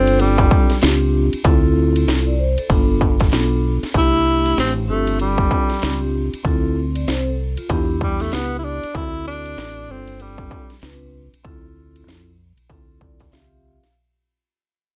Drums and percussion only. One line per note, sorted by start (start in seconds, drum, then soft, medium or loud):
0.07 ride medium
0.19 ride medium
0.38 kick medium
0.51 kick medium
0.70 snare soft
0.70 ride medium
0.82 snare loud
0.82 hi-hat pedal medium
0.82 ride medium
1.33 ride medium
1.44 kick loud
1.44 ride medium
1.96 ride medium
2.08 snare loud
2.08 hi-hat pedal medium
2.08 ride medium
2.58 ride medium
2.70 kick medium
2.70 ride medium
3.01 kick medium
3.20 kick medium
3.20 snare soft
3.20 ride medium
3.32 snare loud
3.32 hi-hat pedal medium
3.32 ride medium
3.83 snare soft
3.83 ride medium
3.94 kick medium
3.94 ride medium
4.46 ride medium
4.58 snare loud
4.58 hi-hat pedal medium
4.58 ride medium
5.07 ride medium
5.19 ride medium
5.38 kick medium
5.51 kick medium
5.70 snare soft
5.70 ride medium
5.82 snare loud
5.82 hi-hat pedal medium
5.82 ride medium
6.34 ride medium
6.45 kick medium
6.45 ride medium
6.95 ride medium
7.08 snare loud
7.08 hi-hat pedal medium
7.08 ride medium
7.57 ride medium
7.69 kick loud
7.69 ride medium
8.01 kick medium
8.20 snare soft
8.20 ride medium
8.32 snare loud
8.32 hi-hat pedal medium
8.32 ride medium
8.83 ride medium
8.95 kick loud
8.95 ride medium
9.46 ride medium
9.58 snare loud
9.58 hi-hat pedal medium
9.58 ride medium
10.07 ride medium
10.20 ride medium
10.38 kick medium
10.51 kick medium
10.70 snare soft
10.70 ride medium
10.82 snare loud
10.82 hi-hat pedal medium
10.82 ride medium
11.34 ride medium
11.45 kick loud
11.45 ride medium
11.96 ride medium
12.08 snare loud
12.08 hi-hat pedal medium
12.08 ride medium
12.57 ride medium
12.70 kick loud
12.70 ride medium
13.01 kick medium
13.20 kick medium
13.20 snare soft
13.20 ride medium
13.32 snare loud
13.32 hi-hat pedal medium
13.32 ride medium
13.83 snare soft
13.83 ride medium